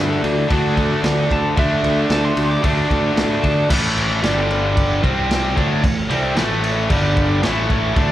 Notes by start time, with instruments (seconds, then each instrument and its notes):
Already playing: picked electric bass G2, overdriven electric guitar D3 A3 D4, tonewheel organ D4 F#4 A4
0.09 lead electric guitar A4
0.23 picked electric bass D2, tonewheel organ D4 F#4 A4, lead electric guitar F#4, ride
0.38 lead electric guitar E4
0.48 picked electric bass D2, overdriven electric guitar D3 A3 D4, tonewheel organ D4 F#4 A4, lead electric guitar F#4, kick, ride
0.77 tonewheel organ D4 F#4 A4, kick, ride
1.04 picked electric bass D2, tonewheel organ D4 F#4 A4, snare, ride
1.30 picked electric bass D2, tonewheel organ D4 F#4 A4, lead electric guitar A5, kick, ride
1.56 picked electric bass D2, overdriven electric guitar D3 A3 D4, tonewheel organ D4 F#4 A4, lead electric guitar E5, kick, ride
1.83 picked electric bass D2, tonewheel organ D4 F#4 A4, ride
2.10 picked electric bass D2, tonewheel organ D4 F#4 A4, lead electric guitar A5, snare, ride
2.25 lead electric guitar C6
2.37 picked electric bass D2, tonewheel organ D4 F#4 A4, ride
2.51 lead electric guitar D6
2.63 picked electric bass D2, overdriven electric guitar D3 A3 D4, tonewheel organ D4 F#4 A4, kick, ride
2.88 picked electric bass D2, tonewheel organ D4 F#4 A4, kick, ride
3.15 picked electric bass A2, tonewheel organ D4 F#4 A4, snare, ride
3.43 picked electric bass D2, tonewheel organ D4 F#4 A4, lead electric guitar A5, kick, ride
3.69 picked electric bass A1, overdriven electric guitar A2 E3 A3, tonewheel organ C#4 E4 A4, kick, crash
3.96 tonewheel organ C#4 E4 A4, crash
4.23 picked electric bass G1, overdriven electric guitar G2 D3 G3, tonewheel organ D4 G4 D5, snare, crash
4.50 tonewheel organ D4 G4 D5, crash
4.76 tonewheel organ D4 G4 D5, kick, crash
5.02 picked electric bass C2, overdriven electric guitar C3 G3 C4, tonewheel organ C4 G4 C5, kick, crash
5.31 snare, crash
5.55 picked electric bass D2, overdriven electric guitar D3 A3 D4, tonewheel organ E4 A4 C#5, kick, crash
5.83 picked electric bass A1, overdriven electric guitar A2 E3, kick, crash
6.09 picked electric bass C2, overdriven electric guitar C3 G3 C4, tonewheel organ E4 A4 E5, crash
6.36 picked electric bass A1, overdriven electric guitar A2 E3 A3, tonewheel organ E4 A4 B4, snare, crash
6.64 tonewheel organ E4 A4 C#5, crash
6.89 picked electric bass G1, overdriven electric guitar G2 D3 G3, tonewheel organ D4 G4 D5, kick, crash
7.16 tonewheel organ D4 G4 D5 G5, kick, crash
7.42 picked electric bass A1, overdriven electric guitar A2 E3 A3, tonewheel organ E4 A4 C#5 A5, snare, crash
7.70 tonewheel organ E4 A4 C#5 C#6, kick, crash
7.95 picked electric bass D2, overdriven electric guitar D3 A3 D4, tonewheel organ D4 A4 D5, kick, crash